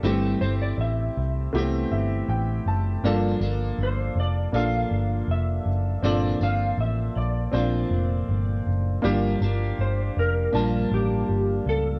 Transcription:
<<
  \new Staff \with { instrumentName = "Electric slide guitar" } { \time 4/4 \key bes \lydian \tempo 4 = 80 a'8 c''16 d''16 e''4 r2 | r4 c''8 d''8 f''4 e''4 | d''8 f''8 e''8 d''2 r8 | r4 c''8 bes'4 g'4 a'8 | }
  \new Staff \with { instrumentName = "Upright piano" } { \time 4/4 \key bes \lydian << { r2 r8 e''8 g''8 a''8 | r1 | r1 | r1 | } \\ { <a c' e' g'>4. r8 <a b c' e' g'>4. r8 | <bes d' f' a'>4. r8 <bes d' f' a'>4. r8 | <c' d' f' a'>4. r8 <c' d' f' c''>4. r8 | <bes d' e' f' g'>4. r8 <bes d' f' a''>4. r8 | } >> }
  \new Staff \with { instrumentName = "Clean electric guitar" } { \time 4/4 \key bes \lydian <g, e a c'>8 <e a c'>4. <e a c'>2 | <g, f bes d'>8 <f bes d'>4. <f bes d'>2 | <bes, f bes d'>8 <f bes d'>4. <bes, f bes d'>2 | <g, f bes d'>8 <f bes d'>4. <g, f bes d'>2 | }
  \new Staff \with { instrumentName = "Picked electric bass" } { \clef bass \time 4/4 \key bes \lydian g,,8 g,,8 a,,8 c,8 c,8 g,,8 a,,8 fis,,8 | g,,8 g,,8 g,,8 f,,8 bes,,8 g,,8 f,,8 fis,,8 | g,,8 g,,8 a,,8 bes,,8 bes,,8 f,,8 g,,8 fis,,8 | g,,8 g,,8 g,,8 f,,8 bes,,8 a,,8 g,,8 cis,8 | }
>>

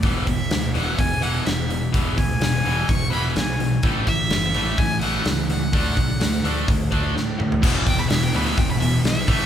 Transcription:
<<
  \new Staff \with { instrumentName = "Violin" } { \time 4/4 \key e \mixolydian \tempo 4 = 127 r8 e''4 fis''8 gis''8 fis''8 e''4 | r8 gis''4. cis'''8 b''8 gis''4 | r8 e''4. gis''8 fis''4 fis''8~ | fis''2. r4 |
r8 g''16 b''16 e''16 g''16 b''16 e''16 g''16 b''16 e''8 e''4 | }
  \new Staff \with { instrumentName = "Distorted electric guitar" } { \clef bass \time 4/4 \key e \mixolydian r1 | r1 | r1 | r1 |
<e, b, e>2.~ <e, b, e>8 <a, e a>8 | }
  \new Staff \with { instrumentName = "Overdriven electric guitar" } { \clef bass \time 4/4 \key e \mixolydian <e, b, e>8 <e, b,>8 <e, b,>8 <e, b, e>8 <e, b,>8 <e, b, e>8 <e, b,>8 <e, b,>8 | <e, b, e>8 <e, b,>8 <e, b,>8 <e, b, e>8 <e, b,>8 <e, b, e>8 <e, b,>8 <e, b,>8 | <a, e a>8 <a, e>8 <a, e>8 <a, e a>8 <a, e>8 <a, e a>8 <a, e>8 <a, e>8 | <d a d'>8 <d a>8 <d a>8 <d a d'>8 <d a>8 <d a d'>8 <d a>8 <d a>8 |
<e, b, e>8 <e, b,>8 <e, b,>8 <e, b, e>8 <e, b,>8 <e, b,>8 <e, b,>8 <a, e a>8 | }
  \new Staff \with { instrumentName = "Overdriven electric guitar" } { \clef bass \time 4/4 \key e \mixolydian <e, b, e>8 <e, b,>8 <e, b,>8 <e, b, e>8 <e, b,>8 <e, b, e>8 <e, b,>8 <e, b,>8 | <e, b, e>8 <e, b,>8 <e, b,>8 <e, b, e>8 <e, b,>8 <e, b, e>8 <e, b,>8 <e, b,>8 | <a, e a>8 <a, e>8 <a, e>8 <a, e a>8 <a, e>8 <a, e a>8 <a, e>8 <a, e>8 | <d a d'>8 <d a>8 <d a>8 <d a d'>8 <d a>8 <d a d'>8 <d a>8 <d a>8 |
<e, b, e>8 <e, b,>8 <e, b,>8 <e, b, e>8 <e, b,>8 <e, b,>8 <e, b,>8 <a, e a>8 | }
  \new Staff \with { instrumentName = "Fingered electric bass" } { \clef bass \time 4/4 \key e \mixolydian e,,8 e,,8 d,8 e,,8 e,,4 e,,4 | e,,8 d,8 e,,8 e,,8 e,,4 b,,4 | a,,8 a,,8 fis,,8 a,,8 a,,4 cis,4 | d,8 b,,8 d,8 d,8 d,4 a,4 |
e,,8 e,,8 e,,8 d,8 e,,8 e,,8 b,,8 a,,8 | }
  \new DrumStaff \with { instrumentName = "Drums" } \drummode { \time 4/4 <hho bd>8 <hho bd>8 <hho sn>8 hho8 <hho bd>8 hho8 <hho sn>8 hho8 | <hho bd>8 <hho bd>8 <hho sn>8 hho8 <hho bd>8 hho8 <hho sn>8 hho8 | <hho bd>8 <hho bd>8 <hho sn>8 hho8 <hho bd>8 hho8 <hho sn>8 hho8 | <hho bd>8 <hho bd>8 <hho sn>8 hho8 <hho bd>8 <hho bd>8 sn8 toml16 tomfh16 |
<cymc bd>8 <hho bd>8 <hho sn>8 hho8 <hho bd>8 hho8 <hho sn>8 <hho bd>8 | }
>>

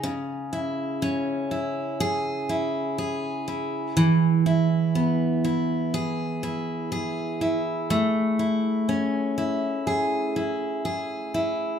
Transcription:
\new Staff \with { instrumentName = "Steel-string acoustic guitar" } { \time 4/4 \key cis \minor \tempo 4 = 61 cis8 e'8 cis'8 e'8 gis'8 e'8 gis'8 e'8 | e8 e'8 b8 e'8 gis'8 e'8 gis'8 e'8 | a8 e'8 cis'8 e'8 gis'8 e'8 gis'8 e'8 | }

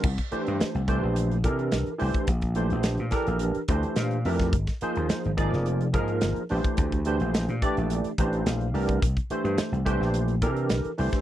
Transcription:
<<
  \new Staff \with { instrumentName = "Tine electric piano" } { \time 4/4 \key c \mixolydian \tempo 4 = 107 << { r1 | r2 r8 a''8 f''8 e''8 | r1 | r2 r8 bes''8 f''8 d''8 |
r1 | } \\ { r8 <e a d' g' c''>4 <e a d' g' c''>4 <e d' g' a' bes'>4 <e a d' g' c''>8 | r8 <e a d' g' c''>4 <e d' g' a' bes'>4 <e a d' g' c''>4 <e a d' g' bes'>8 | r8 <f bes ees' aes' c''>4 <f bes ees' aes' d''>4 <f bes ees' aes' bes'>4 <e a d' g' c''>8~ | <e a d' g' c''>8 <e a d' g' c''>4 <e a d' g' d''>4 <e a d' g' c''>4 <e a d' g' bes'>8 |
r8 <e a d' g' c''>4 <e a d' g' c''>4 <e d' g' a' bes'>4 <e a d' g' c''>8 | } >> }
  \new Staff \with { instrumentName = "Slap bass" } { \clef bass \time 4/4 \key c \mixolydian c,16 r8 g,16 r16 c,8 bes,,8. c8 c,16 r16 c,16 r16 | bes,,8. bes,,8 bes,16 r16 bes,,8 r16 d,16 r16 bes,8 f,8 | aes,,16 r8 ees,16 r16 aes,,8 f,,8. aes,8 aes,,16 r16 bes,,16 r16 | d,8. bes,,8 bes,16 r16 bes,,8 r16 a,,8 bes,,8 c,8 |
c,16 r8 g,16 r16 c,8 bes,,8. c8 c,16 r16 c,16 r16 | }
  \new DrumStaff \with { instrumentName = "Drums" } \drummode { \time 4/4 <cymc bd>16 <hh bd>16 hh16 hh16 <hh sn>16 hh16 <hh bd>8 hh16 hh16 <hh bd>16 hh16 <hh sn>16 hh16 hho16 <hh bd>16 | <hh bd>16 <hh bd>16 hh16 hh16 <hh sn>16 hh16 <hh bd sn>16 hh16 hh16 hh16 <hh bd>16 hh16 <hh sn>16 hh16 hho16 <hh bd sn>16 | <hh bd>16 <hh bd sn>16 hh16 hh16 <hh sn>16 hh16 <hh bd>16 sn16 hh16 hh16 <hh bd>16 hh16 <hh sn>16 hh16 hho16 <hh bd>16 | <hh bd>16 <hh bd>16 hh16 hh16 <hh sn>16 hh16 <hh bd>16 hh16 hh16 hh16 <hh bd>16 hh16 <hh sn>16 hh16 hho16 <hh bd>16 |
<hh bd>16 <hh bd>16 hh16 hh16 <hh sn>16 hh16 <hh bd>16 sn16 hh16 hh16 <hh bd>16 hh16 <hh sn>16 hh16 hho16 <hh bd sn>16 | }
>>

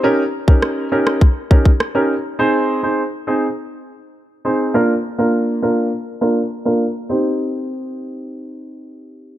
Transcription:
<<
  \new Staff \with { instrumentName = "Grand piano" } { \time 4/4 \key c \minor \tempo 4 = 102 <des' ees' g' bes'>16 r8 <des' ees' g' bes'>8. <des' ees' g' bes'>8 r8 <des' ees' g' bes'>16 r8 <des' ees' g' bes'>16 r8 | <c' ees' aes' c''>8. <c' ees' aes' c''>16 r8 <c' ees' aes' c''>16 r4. r16 <c' ees' aes' c''>8 | <bes d' f' bes'>16 r8 <bes d' f' bes'>8. <bes d' f' bes'>8 r8 <bes d' f' bes'>16 r8 <bes d' f' bes'>16 r8 | <c' ees' g' c''>1 | }
  \new DrumStaff \with { instrumentName = "Drums" } \drummode { \time 4/4 r8. bd16 ss8. ss16 bd8 bd16 bd16 ss4 | r4 r4 r4 r4 | r4 r4 r4 r4 | r4 r4 r4 r4 | }
>>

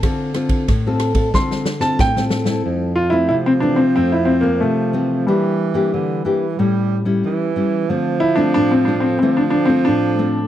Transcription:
<<
  \new Staff \with { instrumentName = "Grand piano" } { \time 4/4 \key d \minor \tempo 4 = 92 r2 c'''8. a''16 g''8 r8 | \key f \major r8 f'16 e'16 e'16 c'16 d'16 c'16 c'16 e'16 c'16 bes16 a4 | g2.~ g8 r8 | r8 e'16 d'16 d'16 c'16 d'16 c'16 c'16 d'16 d'16 c'16 d'4 | }
  \new Staff \with { instrumentName = "Nylon-string guitar" } { \time 4/4 \key d \minor << { <c' f' a'>8 <c' f' a'>8 r16 <c' f' a'>8 <c' f' a'>16 <c' f' a'>8 r16 <c' f' a'>8 <c' f' a'>8 <c' e' a'>16~ | \key f \major <c' e' a'>8 r16 <a c'>8. <e a c'>16 r16 <a c'>8. <a c'>8. <e a c'>8 | <bes d' g'>8. <bes d' g'>8. <bes d' g'>16 r16 <g cis' e'>8. <g cis' e'>8. <g cis' e'>8 | <a c' f'>8 r16 <a c' f'>8. <a c' f'>8 <a c' f'>8 r16 <a c' f'>8. <a c' f'>16 r16 | } \\ { d4 a,4 d4 a,4 | f,4 c4 f,4 c4 | e4 e4 a,4 e4 | d4 a,4 d4 a,4 | } >> }
  \new Staff \with { instrumentName = "Tenor saxophone" } { \clef bass \time 4/4 \key d \minor r1 | \key f \major f1 | e4 d8 e8 g8 r8 e4 | f2 f2 | }
  \new DrumStaff \with { instrumentName = "Drums" } \drummode { \time 4/4 <bd cymr ss>8 <cymr ss>16 <bd cymr>16 <bd cymr ss>8 <cymr ss>16 <bd cymr>16 <bd sn>16 sn16 sn16 sn16 <bd sn>16 sn16 sn16 sn16 | r4 r4 r4 r4 | r4 r4 r4 r4 | r4 r4 r4 r4 | }
>>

